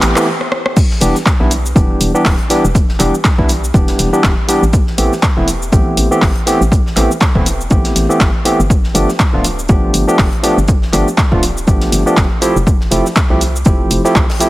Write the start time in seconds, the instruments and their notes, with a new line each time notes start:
Already playing: tine electric piano E3 A3 B3 C4 G4
0.02 fm bass A1, clap, open hi-hat
0.16 tine electric piano E3 A3 B3 C4 G4, clap, shaker
0.41 cross-stick
0.52 cross-stick
0.66 cross-stick
0.77 kick, crash, shaker
0.91 snare
1.00 fm bass E1, tine electric piano E3 G3 B3 D4 G4, open hi-hat, shaker
1.02 shaker
1.15 snare, shaker
1.26 kick, snare, clap, shaker
1.40 fm bass B1, tine electric piano E3 G3 B3 D4 E4
1.51 open hi-hat, shaker
1.66 shaker
1.75 fm bass E1, tine electric piano E3 G3 B3 D4 G4, kick, shaker
2.01 fm bass E1, open hi-hat, shaker
2.14 tine electric piano E3 G3 B3 D4 G4, shaker
2.25 fm bass D1, kick, snare, clap, open hi-hat, shaker
2.39 closed hi-hat
2.50 tine electric piano E3 G3 B3 D4 G4, snare, open hi-hat, shaker
2.64 fm bass E1, shaker
2.75 kick, shaker
2.89 snare
2.99 fm bass E1, tine electric piano E3 G3 B3 D4 G4, clap, open hi-hat, shaker
3.14 shaker
3.24 kick, snare, clap, shaker
3.38 fm bass B1, tine electric piano E3 G3 B3 D4 E4, kick
3.49 open hi-hat, shaker
3.64 shaker
3.74 fm bass E1, tine electric piano E3 G3 B3 D4 G4, kick, shaker
3.88 snare, open hi-hat
3.99 fm bass E1, snare, open hi-hat, shaker
4.12 tine electric piano E3 G3 B3 D4 G4, shaker
4.24 fm bass D1, kick, snare, clap, shaker
4.48 tine electric piano E3 G3 B3 D4 G4, open hi-hat, shaker
4.62 fm bass A1, shaker
4.73 kick, shaker
4.87 snare
4.98 fm bass A1, tine electric piano E3 A3 B3 C4 G4, open hi-hat, shaker
5.12 snare, shaker
5.23 kick, snare, clap, shaker
5.36 fm bass E1, tine electric piano E3 A3 B3 C4 E4
5.48 open hi-hat, shaker
5.62 shaker
5.72 fm bass A1, tine electric piano E3 A3 B3 C4 G4, kick, shaker
5.97 fm bass A1, open hi-hat, shaker
6.11 tine electric piano E3 A3 B3 C4 G4, shaker
6.22 fm bass G1, kick, snare, clap, open hi-hat, shaker
6.35 closed hi-hat
6.46 tine electric piano E3 A3 B3 C4 G4, snare, open hi-hat, shaker
6.61 fm bass A1, shaker
6.72 kick, shaker
6.86 snare
6.96 fm bass A1, tine electric piano E3 A3 B3 C4 G4, clap, open hi-hat, shaker
7.11 shaker
7.20 kick, snare, clap, shaker
7.35 fm bass E1, tine electric piano E3 A3 B3 C4 E4, kick
7.46 open hi-hat, shaker
7.61 shaker
7.70 fm bass A1, tine electric piano E3 A3 B3 C4 G4, kick, shaker
7.84 snare, open hi-hat
7.95 fm bass A1, snare, open hi-hat, shaker
8.09 tine electric piano E3 A3 B3 C4 G4, shaker
8.20 fm bass G1, kick, snare, clap, shaker
8.45 tine electric piano E3 A3 B3 C4 G4, open hi-hat, shaker
8.59 fm bass G1, shaker
8.70 kick, shaker
8.84 snare
8.94 fm bass G1, tine electric piano F3 A3 B3 D4 G4, open hi-hat, shaker
9.08 snare, shaker
9.19 kick, snare, clap, shaker
9.33 fm bass D1, tine electric piano F3 A3 B3 D4 F4
9.44 open hi-hat, shaker
9.59 shaker
9.69 fm bass G1, tine electric piano F3 A3 B3 D4 G4, kick, shaker
9.94 fm bass G1, open hi-hat, shaker
10.07 tine electric piano F3 A3 B3 D4 G4, shaker
10.18 fm bass F1, kick, snare, clap, open hi-hat, shaker
10.33 closed hi-hat
10.43 tine electric piano F3 A3 B3 D4 G4, snare, open hi-hat, shaker
10.57 fm bass G1, shaker
10.68 kick, shaker
10.82 snare
10.93 fm bass G1, tine electric piano F3 A3 B3 D4 G4, clap, open hi-hat, shaker
11.08 shaker
11.17 kick, snare, clap, shaker
11.31 fm bass D1, tine electric piano F3 A3 B3 D4 F4, kick
11.43 open hi-hat, shaker
11.57 shaker
11.67 fm bass G1, tine electric piano F3 A3 B3 D4 G4, kick, shaker
11.81 snare, open hi-hat
11.92 fm bass G1, snare, open hi-hat, shaker
12.06 tine electric piano F3 A3 B3 D4 G4, shaker
12.17 fm bass F1, kick, snare, clap, shaker
12.41 tine electric piano F3 A3 C4 E4 G4, open hi-hat, shaker
12.56 fm bass F1, shaker
12.67 kick, shaker
12.81 snare
12.91 fm bass F1, tine electric piano F3 A3 C4 E4 G4, open hi-hat, shaker
13.06 snare, shaker
13.16 kick, snare, clap, shaker
13.30 fm bass C2, tine electric piano F3 A3 C4 E4 G4
13.41 open hi-hat, shaker
13.56 shaker
13.65 fm bass F1, tine electric piano F3 A3 C4 E4 G4, kick, shaker
13.67 shaker
13.91 fm bass F1, open hi-hat, shaker
14.04 tine electric piano F3 A3 C4 E4 G4, snare, shaker
14.15 fm bass C2, kick, snare, clap, shaker
14.29 snare, open hi-hat
14.40 tine electric piano F3 A3 C4 E4 G4, closed hi-hat, open hi-hat, shaker